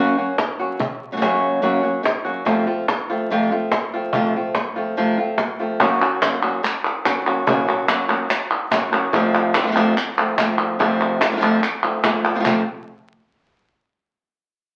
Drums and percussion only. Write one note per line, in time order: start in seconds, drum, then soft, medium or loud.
0.38 cajon slap loud
0.80 cajon bass loud
1.22 cajon slap loud
2.05 cajon slap loud
2.26 cajon slap soft
2.46 cajon bass loud
2.46 cajon slap soft
2.88 cajon slap loud
3.30 cajon slap soft
3.71 cajon slap loud
4.13 cajon bass loud
4.55 cajon slap loud
5.38 cajon slap loud
5.80 cajon bass loud
5.80 cajon slap soft
6.22 cajon slap loud
6.22 clap medium
6.43 clap medium
6.65 clap loud
6.85 clap soft
7.05 cajon bass medium
7.05 cajon slap loud
7.05 clap medium
7.26 cajon slap soft
7.26 clap medium
7.47 cajon bass loud
7.88 cajon slap loud
7.88 clap loud
8.10 clap soft
8.30 cajon slap soft
8.30 clap medium
8.51 clap medium
8.72 cajon bass medium
8.72 cajon slap loud
8.72 clap medium
8.93 cajon slap soft
8.93 clap medium
9.13 cajon bass loud
9.13 cajon slap soft
9.54 cajon slap loud
9.54 clap loud
9.76 clap medium
9.97 cajon slap soft
9.97 clap medium
10.38 cajon bass medium
10.38 cajon slap loud
10.38 clap medium
10.58 cajon slap soft
10.58 clap medium
10.80 cajon bass loud
10.80 cajon slap soft
11.21 cajon slap loud
11.21 clap loud
11.43 clap medium
11.63 clap medium
11.83 clap medium
12.04 cajon bass medium
12.04 cajon slap loud
12.04 clap medium
12.25 clap medium
12.45 cajon bass loud
12.45 clap loud